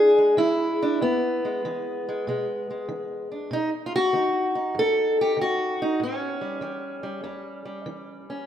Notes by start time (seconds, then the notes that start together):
Already playing: B2 D4 G#4
0.18 G#3
0.37 E3 E4
0.82 D4
1.01 E2 B3
1.45 G#3
1.65 E3 G#3
2.09 G#3
2.27 B2 G#3
2.70 G#3
2.89 E3
3.32 D4
3.51 B2 D#4
3.86 F4
3.96 F#4
4.13 D#3 D#4
4.55 D#4
4.75 F#2
4.79 A4
5.21 G4
5.37 D#3
5.41 F#4
5.82 D#4
6.00 A2 C#4
6.41 G3
6.61 E3 G3
7.03 G3
7.24 E2 G3
7.65 G3
7.86 E3
8.30 C#4